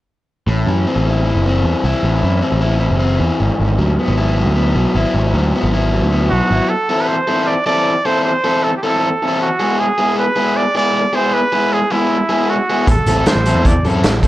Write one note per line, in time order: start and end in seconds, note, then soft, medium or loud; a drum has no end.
0.47 0.65 A1 medium
0.47 1.45 A2 medium
0.67 0.85 F#2 medium
0.67 1.25 E3 medium
0.87 1.45 C4 medium
0.96 1.32 A1 medium
1.07 1.83 E4 medium
1.26 1.65 E3 medium
1.35 1.62 F#1 medium
1.46 2.41 C4 medium
1.64 1.73 E2 medium
1.64 2.23 E3 medium
1.84 1.93 C2 medium
1.84 2.61 E4 medium
2.03 2.21 A1 medium
2.03 3.01 A2 medium
2.23 2.41 F#2 medium
2.23 2.79 E3 medium
2.42 2.99 C4 medium
2.52 2.88 A1 medium
2.61 3.81 E4 medium
2.80 3.19 E3 medium
2.91 3.18 F#1 medium
3.00 3.39 C4 medium
3.19 3.29 E2 medium
3.19 3.78 E3 medium
3.39 3.49 G#1 medium
3.39 3.59 G#2 medium
3.60 3.77 G#1 medium
3.60 4.56 G#2 medium
3.78 3.97 D2 medium
3.78 4.35 F#3 medium
3.99 4.54 B3 medium
4.08 4.44 G#1 medium
4.17 4.95 E4 medium
4.36 4.74 F#3 medium
4.46 4.73 D2 medium
4.55 5.53 B3 medium
4.75 4.84 B1 medium
4.75 5.33 F#3 medium
4.95 5.04 G#1 medium
4.95 5.72 E4 medium
5.14 5.32 G#1 medium
5.14 6.11 G#2 medium
5.34 5.52 D2 medium
5.34 5.92 F#3 medium
5.55 6.11 B3 medium
5.63 5.99 G#1 medium
5.74 6.50 E4 medium
5.93 6.31 F#3 medium
6.02 6.29 D2 medium
6.13 6.70 B3 medium
6.30 6.40 B1 medium
6.30 6.70 F#3 medium
6.30 6.71 F#4 medium
6.51 6.59 G#1 medium
6.51 6.70 E4 medium
6.69 7.03 A4 medium
6.89 7.15 E3 medium
6.89 7.14 C4 medium
6.89 7.14 E4 medium
6.89 7.14 A4 medium
7.01 7.09 B4 medium
7.07 7.43 C5 medium
7.28 7.53 E3 medium
7.28 7.53 C4 medium
7.28 7.53 E4 medium
7.28 7.53 A4 medium
7.43 7.48 C5 medium
7.43 7.65 D5 medium
7.66 7.92 E3 medium
7.66 7.92 C4 medium
7.66 7.91 E4 medium
7.66 7.91 A4 medium
7.66 8.07 D5 loud
8.05 8.31 E3 medium
8.05 8.31 C4 medium
8.05 8.30 E4 medium
8.05 8.30 A4 medium
8.05 8.23 C5 loud
8.23 8.65 C5 medium
8.44 8.69 E3 medium
8.44 8.69 C4 medium
8.44 8.69 E4 medium
8.44 8.69 A4 medium
8.63 8.75 A4 medium
8.76 8.84 G4 medium
8.83 9.08 E3 medium
8.83 9.08 C4 medium
8.83 9.08 E4 medium
8.83 9.40 A4 medium
8.83 9.08 A4 medium
9.23 9.47 E3 medium
9.23 9.47 C4 medium
9.23 9.47 E4 medium
9.23 9.47 A4 medium
9.41 9.81 F#4 medium
9.60 9.85 G#3 medium
9.60 9.85 B3 medium
9.60 9.85 E4 medium
9.60 9.85 G#4 medium
9.79 10.17 G#4 medium
9.98 10.24 G#3 medium
9.98 10.24 B3 medium
9.98 10.23 E4 medium
9.98 10.23 G#4 medium
10.18 10.58 B4 medium
10.36 10.62 G#3 medium
10.36 10.62 B3 medium
10.36 10.62 E4 medium
10.36 10.61 G#4 medium
10.56 10.75 D5 loud
10.75 11.01 G#3 medium
10.75 11.01 B3 medium
10.75 11.00 E4 medium
10.75 11.00 G#4 medium
10.75 11.16 D5 medium
11.13 11.39 G#3 medium
11.13 11.39 B3 medium
11.13 11.39 E4 medium
11.13 11.38 G#4 medium
11.13 11.35 C5 medium
11.33 11.74 B4 loud
11.52 11.78 G#3 medium
11.52 11.78 B3 medium
11.52 11.78 E4 medium
11.52 11.77 G#4 medium
11.72 11.93 G#4 medium
11.91 12.17 G#3 medium
11.91 12.16 B3 medium
11.91 12.16 E4 medium
11.91 12.51 E4 medium
11.91 12.16 G#4 medium
12.29 12.55 G#3 medium
12.29 12.55 B3 medium
12.29 12.55 E4 medium
12.29 12.55 G#4 medium
12.49 12.88 F#4 medium
12.70 12.89 G#3 soft
12.70 12.89 B3 medium
12.70 12.89 E4 medium
12.70 12.88 G#4 medium
12.87 12.97 A1 medium
12.87 13.29 A4 medium
12.87 kick loud
12.87 closed hi-hat medium
13.06 13.25 A1 medium
13.06 13.33 E3 medium
13.06 13.33 C4 medium
13.06 13.33 E4 medium
13.06 13.33 A4 medium
13.06 closed hi-hat medium
13.26 13.68 C5 medium
13.26 snare loud
13.26 closed hi-hat medium
13.35 13.55 A1 medium
13.46 13.72 E3 medium
13.46 13.72 C4 medium
13.46 13.71 E4 medium
13.46 13.71 A4 medium
13.46 closed hi-hat medium
13.55 13.82 E2 medium
13.65 13.85 D5 medium
13.65 kick loud
13.65 closed hi-hat medium
13.85 14.02 F#2 medium
13.85 14.11 E3 medium
13.85 14.11 C4 medium
13.85 14.10 E4 medium
13.85 14.10 A4 medium
13.85 closed hi-hat medium
14.04 14.28 A1 medium
14.04 snare loud
14.04 closed hi-hat medium
14.23 14.28 E3 medium
14.23 14.28 C4 medium
14.23 14.28 E4 medium
14.23 14.28 A4 medium
14.23 14.28 C5 medium
14.23 kick medium
14.23 closed hi-hat medium